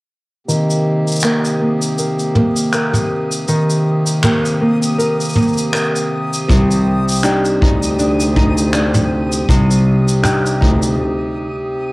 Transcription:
0.47 harmonium C3 A#3 C4 G4, nylon-string guitar D#3, synth texture D#6, cabasa
0.70 cabasa
1.08 cabasa
1.12 cabasa
1.16 cabasa
1.20 nylon-string guitar A#3, finger snap, cabasa
1.24 nylon-string guitar G4 A#4, cabasa
1.45 cabasa
1.61 nylon-string guitar A#3
1.82 cabasa
1.98 nylon-string guitar A#4, cabasa
2.20 cabasa
2.35 nylon-string guitar A#3, mid tom
2.57 cabasa
2.73 nylon-string guitar A#4, finger snap, cabasa
2.93 mid tom, cabasa
3.32 cabasa
3.48 nylon-string guitar D#3, cabasa
3.70 cabasa
4.07 cabasa
4.23 nylon-string guitar A#3 G4 A#4, finger snap, mid tom, cabasa
4.45 cabasa
4.61 nylon-string guitar A#3
4.83 cabasa
4.98 nylon-string guitar A#4, cabasa
5.21 cabasa
5.25 cabasa
5.29 cabasa
5.33 nylon-string guitar A#3, mid tom, cabasa
5.42 cabasa
5.48 cabasa
5.53 cabasa
5.58 cabasa
5.73 nylon-string guitar A#4, finger snap, cabasa
5.96 cabasa
6.33 cabasa
6.48 cello C2, nylon-string guitar C3, harmonium C5, kick, cabasa
6.71 cabasa
7.09 cabasa
7.11 cabasa
7.13 cabasa
7.14 cabasa
7.17 cabasa
7.18 cabasa
7.20 cabasa
7.23 nylon-string guitar D#4, finger snap, cabasa
7.24 nylon-string guitar D4 G4, cabasa
7.45 cabasa
7.61 cello D2, nylon-string guitar D#4, kick
7.83 cabasa
7.99 nylon-string guitar D4, cabasa
8.20 cabasa
8.36 nylon-string guitar D#4, kick, mid tom
8.58 cabasa
8.73 nylon-string guitar D4, finger snap, cabasa
8.94 mid tom, cabasa
9.32 cabasa
9.49 cello C2, nylon-string guitar C3, kick, cabasa
9.71 cabasa
10.08 cabasa
10.23 nylon-string guitar D4 D#4 G4, finger snap, mid tom, cabasa
10.46 cabasa
10.61 cello D2, nylon-string guitar D#4, kick
10.82 cabasa

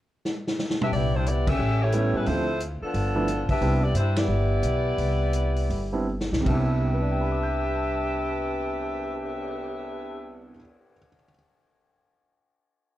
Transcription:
0.25 snare
0.48 snare
0.59 snare
0.70 snare
0.81 saxophone section D4 G4 B4 E5, mid tom
0.92 upright bass C2, saxophone section B3 E4 G4 D5, open hi-hat
1.16 saxophone section G3 D4 E4 C5
1.26 saxophone section B3 E4 G4 D5, closed hi-hat
1.47 saxophone section C#4 G4 A4 E5, kick, crash
1.59 upright bass A1
1.82 saxophone section A3 E4 G4 C#5
1.92 grand piano G3 A3 B3 C#4 E4, closed hi-hat
2.14 upright bass A2, saxophone section G3 C#4 E4 B4
2.26 upright bass D2, grand piano F3 A3 C4 D4 E4, saxophone section A3 E4 F4 C5, open hi-hat
2.60 closed hi-hat
2.82 saxophone section F3 B3 D4 A4, muted upright bass stroke
2.94 upright bass G1, open hi-hat
3.15 grand piano F3 A3 B3 D4 E4
3.28 closed hi-hat
3.49 saxophone section D4 G4 B4 E5, muted upright bass stroke, kick, open hi-hat
3.61 upright bass C2, grand piano G3 B3 C4 D4 E4, open hi-hat
3.83 saxophone section B3 E4 G4 D5
3.94 upright bass G2, saxophone section G3 D4 E4 C5, closed hi-hat
4.16 saxophone section B3 E4 G4 D5, snare, ride
4.28 upright bass G1
4.63 upright bass B1, closed hi-hat
4.98 upright bass C2, open hi-hat
5.33 closed hi-hat
5.56 open hi-hat
5.70 upright bass G1, open hi-hat
5.93 grand piano G3 B3 C4 D4 E4
6.21 snare
6.32 upright bass B1, snare
6.40 grand piano C3 G3
6.46 upright bass C2, grand piano B3 D4, saxophone section D4 G4 B4 E5, kick, crash
6.52 grand piano E4
6.71 cymbal swell
6.86 grand piano G4
6.93 grand piano B4
7.02 grand piano D5
7.11 grand piano G5
7.21 grand piano B5
7.32 grand piano D6
7.43 grand piano G6

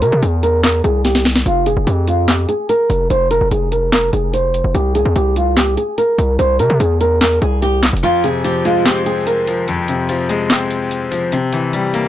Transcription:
0.02 808-style bass C3, nylon-string guitar A#4, closed hi-hat
0.12 808-style bass C3
0.23 808-style bass E2, nylon-string guitar G#4, closed hi-hat
0.43 nylon-string guitar A#4, closed hi-hat
0.64 nylon-string guitar A#4, snare, clap, closed hi-hat
0.84 808-style bass C2, nylon-string guitar G#4, closed hi-hat
1.05 nylon-string guitar G4, snare, closed hi-hat
1.15 snare
1.25 snare, closed hi-hat
1.32 snare, closed hi-hat
1.39 closed hi-hat
1.46 808-style bass F1, nylon-string guitar F4, closed hi-hat
1.66 nylon-string guitar G#4, closed hi-hat
1.77 808-style bass F1
1.87 808-style bass F2, nylon-string guitar G4, closed hi-hat
2.08 nylon-string guitar F4, closed hi-hat
2.28 nylon-string guitar G4, snare, clap, closed hi-hat
2.49 nylon-string guitar G#4, closed hi-hat
2.69 nylon-string guitar A#4, closed hi-hat
2.90 808-style bass F1, closed hi-hat
3.10 808-style bass F1, nylon-string guitar C5, closed hi-hat
3.31 nylon-string guitar A#4, closed hi-hat
3.41 808-style bass F1
3.51 808-style bass F1, nylon-string guitar G#4, closed hi-hat
3.72 nylon-string guitar A#4, closed hi-hat
3.92 nylon-string guitar A#4, snare, clap, closed hi-hat
4.13 808-style bass F1, nylon-string guitar G#4, closed hi-hat
4.34 nylon-string guitar C5, closed hi-hat
4.54 closed hi-hat
4.64 808-style bass F1
4.75 808-style bass C2, nylon-string guitar G4, closed hi-hat
4.95 nylon-string guitar G#4, closed hi-hat
5.05 808-style bass E2
5.16 808-style bass C2, nylon-string guitar G4, closed hi-hat
5.36 nylon-string guitar F4, closed hi-hat
5.57 808-style bass C#2, nylon-string guitar G4, snare, clap, closed hi-hat
5.67 808-style bass C2
5.77 nylon-string guitar G#4, closed hi-hat
5.98 nylon-string guitar A#4, closed hi-hat
6.18 808-style bass C2, closed hi-hat
6.39 808-style bass C2, nylon-string guitar C5, closed hi-hat
6.59 808-style bass C3, nylon-string guitar A#4, closed hi-hat
6.70 808-style bass C3
6.80 808-style bass E2, nylon-string guitar G#4, closed hi-hat
7.01 nylon-string guitar A#4, closed hi-hat
7.21 nylon-string guitar A#4, snare, clap, closed hi-hat
7.42 808-style bass C2, nylon-string guitar G#4, closed hi-hat
7.62 nylon-string guitar G4, closed hi-hat
7.83 snare, clap, closed hi-hat
7.90 808-style bass F1, closed hi-hat
7.97 closed hi-hat
8.03 grand piano F2, nylon-string guitar F4, closed hi-hat
8.24 grand piano C3, nylon-string guitar G#4, closed hi-hat
8.44 grand piano F3, nylon-string guitar G4, closed hi-hat
8.65 grand piano G#3, nylon-string guitar F4, closed hi-hat
8.86 grand piano C4, nylon-string guitar G4, snare, clap, closed hi-hat
9.06 nylon-string guitar G#4, closed hi-hat
9.27 nylon-string guitar A#4, closed hi-hat
9.47 grand piano F3, closed hi-hat
9.68 grand piano F2, closed hi-hat
9.88 grand piano C3, closed hi-hat
10.09 grand piano F3, closed hi-hat
10.29 grand piano G#3, closed hi-hat
10.49 grand piano C4, snare, clap, closed hi-hat
10.71 closed hi-hat
10.91 closed hi-hat
11.11 grand piano F3, closed hi-hat
11.32 grand piano C3, closed hi-hat
11.53 grand piano E3, closed hi-hat
11.73 grand piano G3, closed hi-hat
11.94 grand piano A#3, closed hi-hat

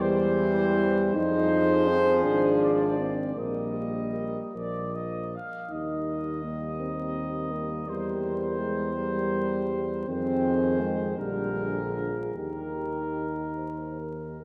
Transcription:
Already playing: tuba E2
0.00 trombone E3, euphonium G3, trumpet section C5, french horn section C5
1.15 tuba F2, trombone F3, euphonium D#4, french horn section G#4, trumpet section C5
1.88 euphonium C4
2.23 tuba G#1, euphonium D4
2.60 trumpet section D5
2.97 euphonium C4
3.35 tuba A#1, trombone G3, euphonium A#3, french horn section A#4, trumpet section D#5
4.55 tuba A#1, trombone F3, french horn section A#4, trumpet section D5
4.94 trumpet section D#5
5.34 trumpet section F5
5.71 tuba D#2, trombone G3, euphonium D#4, french horn section A#4, trumpet section D#5
6.44 euphonium A#3
6.80 euphonium C4
7.52 euphonium A#3
7.88 tuba E2, euphonium G3, trumpet section C5
8.59 euphonium G#3
8.94 euphonium G3
10.08 tuba F2, trombone D#3, euphonium C4, french horn section G#4, trumpet section C5
10.81 euphonium G#3
11.18 tuba A#1, trombone D3, euphonium G3, french horn section G#4, trumpet section A#4
11.95 euphonium F3
12.34 tuba D#2, trombone D#3, euphonium D#3, french horn section G4, trumpet section A#4
13.56 french horn section C5
13.98 french horn section A#4
14.40 french horn section G#4

